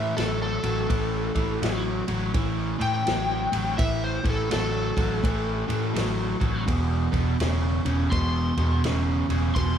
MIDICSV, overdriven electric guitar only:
0, 0, Header, 1, 2, 480
1, 0, Start_track
1, 0, Tempo, 721154
1, 599, Time_signature, 4, 2, 24, 8
1, 6510, End_track
2, 0, Start_track
2, 0, Title_t, "Overdriven electric guitar"
2, 0, Program_c, 0, 29
2, 0, Note_on_c, 0, 45, 71
2, 0, Note_on_c, 0, 52, 74
2, 93, Note_off_c, 0, 45, 0
2, 97, Note_off_c, 0, 52, 0
2, 109, Note_on_c, 0, 45, 80
2, 110, Note_on_c, 0, 54, 88
2, 387, Note_off_c, 0, 45, 0
2, 387, Note_off_c, 0, 54, 0
2, 420, Note_on_c, 0, 45, 67
2, 425, Note_on_c, 0, 54, 77
2, 581, Note_off_c, 0, 45, 0
2, 583, Note_off_c, 0, 54, 0
2, 593, Note_on_c, 0, 45, 88
2, 596, Note_on_c, 0, 52, 96
2, 869, Note_off_c, 0, 45, 0
2, 870, Note_off_c, 0, 52, 0
2, 897, Note_on_c, 0, 45, 62
2, 898, Note_on_c, 0, 52, 67
2, 1059, Note_off_c, 0, 45, 0
2, 1060, Note_off_c, 0, 52, 0
2, 1078, Note_on_c, 0, 45, 87
2, 1081, Note_on_c, 0, 54, 92
2, 1352, Note_off_c, 0, 45, 0
2, 1353, Note_off_c, 0, 54, 0
2, 1379, Note_on_c, 0, 45, 65
2, 1387, Note_on_c, 0, 54, 83
2, 1541, Note_off_c, 0, 45, 0
2, 1544, Note_off_c, 0, 54, 0
2, 1552, Note_on_c, 0, 45, 82
2, 1556, Note_on_c, 0, 52, 102
2, 1829, Note_off_c, 0, 45, 0
2, 1831, Note_off_c, 0, 52, 0
2, 1858, Note_on_c, 0, 45, 73
2, 1858, Note_on_c, 0, 52, 72
2, 2020, Note_off_c, 0, 45, 0
2, 2020, Note_off_c, 0, 52, 0
2, 2044, Note_on_c, 0, 45, 74
2, 2048, Note_on_c, 0, 54, 87
2, 2315, Note_off_c, 0, 45, 0
2, 2317, Note_off_c, 0, 54, 0
2, 2343, Note_on_c, 0, 45, 82
2, 2346, Note_on_c, 0, 54, 84
2, 2503, Note_off_c, 0, 45, 0
2, 2504, Note_off_c, 0, 54, 0
2, 2518, Note_on_c, 0, 45, 76
2, 2522, Note_on_c, 0, 52, 92
2, 2792, Note_off_c, 0, 45, 0
2, 2794, Note_off_c, 0, 52, 0
2, 2819, Note_on_c, 0, 45, 62
2, 2823, Note_on_c, 0, 52, 68
2, 2981, Note_off_c, 0, 45, 0
2, 2983, Note_off_c, 0, 52, 0
2, 2998, Note_on_c, 0, 45, 77
2, 3000, Note_on_c, 0, 54, 98
2, 3272, Note_off_c, 0, 45, 0
2, 3273, Note_off_c, 0, 54, 0
2, 3308, Note_on_c, 0, 54, 84
2, 3310, Note_on_c, 0, 45, 72
2, 3465, Note_off_c, 0, 54, 0
2, 3466, Note_off_c, 0, 45, 0
2, 3478, Note_on_c, 0, 45, 79
2, 3481, Note_on_c, 0, 52, 76
2, 3752, Note_off_c, 0, 45, 0
2, 3754, Note_off_c, 0, 52, 0
2, 3779, Note_on_c, 0, 45, 75
2, 3783, Note_on_c, 0, 52, 76
2, 3941, Note_off_c, 0, 45, 0
2, 3943, Note_off_c, 0, 52, 0
2, 3953, Note_on_c, 0, 45, 83
2, 3957, Note_on_c, 0, 54, 89
2, 4229, Note_off_c, 0, 45, 0
2, 4231, Note_off_c, 0, 54, 0
2, 4260, Note_on_c, 0, 45, 70
2, 4261, Note_on_c, 0, 54, 76
2, 4421, Note_off_c, 0, 45, 0
2, 4422, Note_off_c, 0, 54, 0
2, 4436, Note_on_c, 0, 40, 72
2, 4437, Note_on_c, 0, 47, 83
2, 4711, Note_off_c, 0, 40, 0
2, 4711, Note_off_c, 0, 47, 0
2, 4739, Note_on_c, 0, 47, 74
2, 4740, Note_on_c, 0, 40, 73
2, 4901, Note_off_c, 0, 47, 0
2, 4902, Note_off_c, 0, 40, 0
2, 4930, Note_on_c, 0, 40, 81
2, 4930, Note_on_c, 0, 49, 100
2, 5198, Note_off_c, 0, 40, 0
2, 5198, Note_off_c, 0, 49, 0
2, 5224, Note_on_c, 0, 40, 74
2, 5227, Note_on_c, 0, 49, 79
2, 5383, Note_off_c, 0, 40, 0
2, 5385, Note_off_c, 0, 49, 0
2, 5406, Note_on_c, 0, 40, 84
2, 5409, Note_on_c, 0, 47, 90
2, 5676, Note_off_c, 0, 40, 0
2, 5678, Note_off_c, 0, 47, 0
2, 5707, Note_on_c, 0, 40, 71
2, 5711, Note_on_c, 0, 47, 84
2, 5865, Note_off_c, 0, 40, 0
2, 5867, Note_off_c, 0, 47, 0
2, 5889, Note_on_c, 0, 40, 84
2, 5894, Note_on_c, 0, 49, 92
2, 6157, Note_off_c, 0, 40, 0
2, 6160, Note_off_c, 0, 49, 0
2, 6185, Note_on_c, 0, 40, 79
2, 6190, Note_on_c, 0, 49, 84
2, 6343, Note_off_c, 0, 40, 0
2, 6346, Note_off_c, 0, 49, 0
2, 6364, Note_on_c, 0, 40, 89
2, 6366, Note_on_c, 0, 47, 98
2, 6510, Note_off_c, 0, 40, 0
2, 6510, Note_off_c, 0, 47, 0
2, 6510, End_track
0, 0, End_of_file